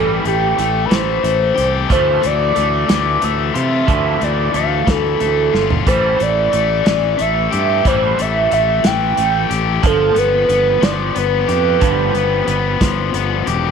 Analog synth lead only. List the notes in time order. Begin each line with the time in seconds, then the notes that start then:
0.27 G4
0.60 G4
0.85 B4
0.94 C5
1.92 C5
2.26 D5
2.90 D5
3.24 E5
3.90 E5
4.24 D5
4.56 F5
4.89 A4
5.88 C5
6.22 D5
6.88 D5
7.21 E5
7.87 C5
8.21 E5
8.53 E5
8.86 G5
9.86 A4
10.18 B4
10.84 D5
11.18 B4
11.83 B4